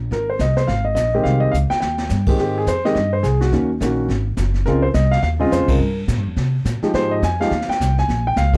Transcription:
0.11 G#1 A#4, brush sweep, kick, snare
0.30 C5
0.39 C2 D#5, kick, snare, hi-hat pedal
0.56 C5, snare
0.67 G#1 F5, brush sweep, kick, snare
0.85 D#5
0.95 A#1 D#5, kick, snare, hi-hat pedal
1.14 D#3 G#3 C4 G4
1.24 C2 F5, brush sweep, kick, snare
1.40 D#5
1.52 C#2 F5, hi-hat pedal
1.70 G5, snare
1.80 D#2 G5, snare
1.98 snare
2.09 G2, snare, hi-hat pedal
2.26 D#3 G#3 C4 G4, kick, crash
2.38 G#2 G4, brush sweep, snare
2.58 G#4
2.66 F2 C5, kick, snare, hi-hat pedal
2.85 D#3 G#3 C4 G4 D#5, snare
2.95 G2 D#5, brush sweep, kick, snare
3.13 C5
3.23 C2 G#4, kick, snare, hi-hat pedal
3.41 F#4, snare
3.52 D#2 D#3 A#3 C#4 F#4, brush sweep, kick, snare
3.80 A#1 D#3 A#3 C#4 F#4, kick, snare, hi-hat pedal
4.09 G#1, brush sweep, kick, snare
4.37 F#1, kick, snare, hi-hat pedal
4.54 snare
4.65 C#2 C#3 G#3 C4 F4 A#4, brush sweep, kick, snare
4.82 C5
4.94 C2 D#5, kick, snare, hi-hat pedal
5.11 F5, snare
5.22 D#2 F5, brush sweep, kick, snare
5.39 C#3 G#3 C4 F4 D#5
5.51 F2 C5, kick, snare, hi-hat pedal
5.60 C#2
5.68 C2 A#4, kick, ride
5.79 G2, brush sweep
6.08 A#2, kick, snare, hi-hat pedal
6.17 G2
6.26 F2
6.36 C3, brush sweep, kick, snare
6.65 A#2, kick, snare, hi-hat pedal
6.82 F3 G#3 D#4 G4, muted upright bass stroke, snare
6.93 G#2 C5, brush sweep, kick, snare
7.11 D#5
7.22 F2 G#5, kick, snare, hi-hat pedal
7.40 F3 G#3 D#4 G4 F5, snare
7.51 D#2, brush sweep, kick, snare
7.61 snare
7.68 G5, muted upright bass stroke, snare
7.80 C2, kick, snare, hi-hat pedal
7.98 G#5, snare
8.08 A#1, brush sweep, kick, snare
8.27 G5
8.36 C#2 F5, kick, snare, hi-hat pedal
8.54 D#3, kick, ride

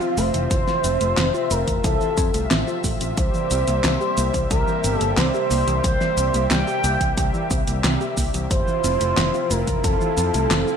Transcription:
Already playing: C3 F3 C4 F4 E5
0.01 F4, shaker
0.17 F1 A3 C5, open hi-hat, shaker
0.34 F1 E3, closed hi-hat, shaker
0.51 F1 E3, kick, closed hi-hat, shaker
0.68 E3, snare, shaker
0.84 F1 C4, closed hi-hat, shaker
1.01 F1 A3, closed hi-hat, shaker
1.17 F1 C4, snare, clap, closed hi-hat, shaker
1.34 F4, shaker
1.51 F1 A3 A#4, closed hi-hat, shaker
1.67 F1 E3, kick, closed hi-hat, shaker
1.84 C2 E3 A4, kick, closed hi-hat, shaker
2.01 E3, shaker
2.17 F2 C4, kick, closed hi-hat, shaker
2.34 C2 A3, closed hi-hat, shaker
2.51 A1 C4, snare, clap, closed hi-hat, shaker
2.67 F4, shaker
2.84 A1 A3, kick, open hi-hat, shaker
3.01 A1 E3, closed hi-hat, shaker
3.17 C2 E3 G3 A#3 G4 C5, kick, closed hi-hat, shaker
3.34 E3, shaker
3.51 C2 C4, closed hi-hat, shaker
3.68 C2 A#3, closed hi-hat, shaker
3.84 C2 C4, snare, clap, closed hi-hat, shaker
4.01 G4, shaker
4.17 C2 A#3, closed hi-hat, shaker
4.34 C2 E3, kick, closed hi-hat, shaker
4.51 C2 E3 A#4, kick, closed hi-hat, shaker
4.67 E3, shaker
4.84 G1 C4, closed hi-hat, shaker
4.95 A4
5.01 G1 A#3, closed hi-hat, shaker
5.17 C2 C4 C5, snare, clap, closed hi-hat, shaker
5.34 G4, shaker
5.51 C2 A#3, open hi-hat, shaker
5.67 C2 E3, closed hi-hat, shaker
5.84 C2 E3 C5, kick, closed hi-hat, shaker
6.01 E3, snare, shaker
6.17 C2 C4, closed hi-hat, shaker
6.34 C2 A#3, closed hi-hat, shaker
6.51 C2 C4 G5, snare, clap, closed hi-hat, shaker
6.67 G4, shaker
6.84 C2 A#3, closed hi-hat, shaker
7.01 C2 E3, kick, closed hi-hat, shaker
7.17 C2 E3, kick, closed hi-hat, shaker
7.34 E3, shaker
7.51 C2 C4, kick, closed hi-hat, shaker
7.67 C2 A#3, closed hi-hat, shaker
7.84 C2 C4, snare, clap, closed hi-hat, shaker
8.01 G4, shaker
8.17 C2 A#3, kick, open hi-hat, shaker
8.34 C2 E3, closed hi-hat, shaker
8.51 F1 E3 F3 C4 E4 F4 C5, kick, closed hi-hat, shaker
8.68 E3, shaker
8.84 F1 C4, closed hi-hat, shaker
9.01 F1 A3, closed hi-hat, shaker
9.17 F1 C4, snare, clap, closed hi-hat, shaker
9.34 F4, shaker
9.51 F1 A3 A#4, closed hi-hat, shaker
9.67 F1 E3, kick, closed hi-hat, shaker
9.84 F1 E3 A4, kick, closed hi-hat, shaker
10.01 E3, shaker
10.17 F2 C4, closed hi-hat, shaker
10.34 C2 A3, closed hi-hat, shaker
10.51 F1 C4, snare, clap, closed hi-hat, shaker
10.67 F4, shaker

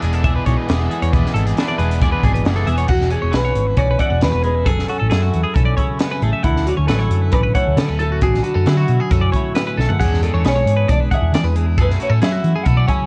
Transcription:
Already playing: E2 E3 D4 G#4
0.01 E1 G#3 B3 E4 G#4 D5, closed hi-hat
0.13 A4, closed hi-hat
0.22 E3 G#3 B3 E4 G#4 D5 E5, kick, closed hi-hat
0.27 G#4
0.36 B4
0.45 B1 B2 G#3 B3 E4 G#4 C#5 D5, kick, closed hi-hat
0.57 B4
0.67 E1 B3 E4 G#4 D5, snare, closed hi-hat
0.80 A4
0.90 E2 G#4, closed hi-hat
1.02 E2 C#5, closed hi-hat
1.13 E1 E3 G#3 B3 E4 G#4 B4 D5, kick, closed hi-hat
1.26 snare
1.34 G#1 B3 E4 G#4 A4 D5, closed hi-hat
1.46 G#4, closed hi-hat
1.56 E3 B3 D4 E4 G#4 D5, snare, closed hi-hat
1.68 D5
1.78 E1 G#3 B4 D5, closed hi-hat
1.82 B3 E4 G#4
1.91 closed hi-hat
2.01 E3 G#3 B3 E4 G#4 D5, kick, closed hi-hat
2.12 B4
2.23 G#1 B2 G#3 B3 E4 G#4 D5, kick, closed hi-hat
2.34 B4, closed hi-hat
2.45 F#1 B3 E4 G#4 D5, snare, closed hi-hat
2.56 A4
2.66 E1 E2 G#4 E5, closed hi-hat
2.77 C#5, closed hi-hat
2.87 E1 E2 F#4 F#5, kick, crash
3.01 snare
3.10 C#4 G#4 D5, closed hi-hat
3.22 E1 C#5
3.31 B1 E3 F#4 B4, snare, closed hi-hat
3.45 C#5
3.55 G#1, closed hi-hat
3.67 B4
3.77 B1 C#4 C#5 D5, kick, closed hi-hat
3.91 B4
3.99 B2 E4 D5 F#5, kick, closed hi-hat
4.10 E1 F#4
4.21 E2 C#4 B4 D5, snare, closed hi-hat
4.32 E1 B4
4.43 G#3 G#4 B4, closed hi-hat
4.55 E4
4.66 F#1 F#2 G#4 A4, kick, closed hi-hat
4.79 snare
4.88 C#4 F#4 A4, closed hi-hat
5.00 A1 A4
5.10 F#2 F#3 E4 G#4, snare, closed hi-hat
5.22 F#4
5.34 E2, closed hi-hat
5.44 G#4
5.54 B1 C#4 A4, kick, closed hi-hat
5.65 D5
5.77 C#3 E4 C#5, kick, closed hi-hat
5.99 B3 B4, snare, closed hi-hat
6.12 C#4 B4
6.22 A1 A3 G#4, closed hi-hat
6.33 E5
6.43 D2 D3 E4 F#5, kick, closed hi-hat
6.56 snare
6.66 C#4 F#4 D5, closed hi-hat
6.77 D2 C#5
6.87 A1 F#3 E4 A4 B4, snare, closed hi-hat
6.99 C#5
7.10 F#2, closed hi-hat
7.22 B4
7.32 A1 C#4 B4 D5, kick, closed hi-hat
7.43 B4
7.55 A2 E4 C#5 F#5, kick, closed hi-hat
7.67 D2
7.76 D3 B3 A4 D5, snare, closed hi-hat
7.89 D2 C#4 B4
7.99 A3 A4, closed hi-hat
8.12 F#4
8.21 A1 D3 F#4 G#4, kick, closed hi-hat
8.34 snare
8.43 B3 F#4, closed hi-hat
8.54 F#2 C#4 A4
8.66 D3 F#3 E4 G#4, snare, closed hi-hat
8.77 F#4
8.88 B2, closed hi-hat
9.00 G#4
9.11 F#2 C#4 A4, kick, closed hi-hat
9.21 D5
9.32 A2 E4 C#5, kick, closed hi-hat
9.55 B3 B4, snare, closed hi-hat
9.67 C#4 B4
9.77 B1 A3 A4, snare
9.89 F#5, floor tom
9.99 E2 G#3 C#4 G#4 F#5, kick, closed hi-hat, crash
10.04 D4
10.13 snare
10.23 B3 A4 D5, closed hi-hat
10.33 E2 D4 C#5
10.45 B1 G#3 G#4 B4 C#5, snare, closed hi-hat
10.55 C#5
10.66 G#2, closed hi-hat
10.77 B4
10.88 B1 D4 D5, kick, closed hi-hat
11.00 B4
11.11 E2 G#4 E5 F#5, kick, closed hi-hat
11.22 E2
11.32 E3 D5, snare, closed hi-hat
11.44 E2 B4
11.56 E2 G#4, closed hi-hat
11.66 E4
11.78 F#2 F#3 A3 C#4 G#4 B4, kick, closed hi-hat
11.82 E4
11.90 snare
12.00 B3 F#4 C#5, closed hi-hat
12.10 A2 C#4 A4
12.22 F#3 E4 G#4 E5, snare, closed hi-hat
12.33 F#4
12.44 E3, closed hi-hat
12.56 G#4
12.64 B2 A4 F#5, kick, closed hi-hat
12.68 B3
12.77 C#4 D5
12.88 C#3 E4 C#5 G#5, kick, closed hi-hat

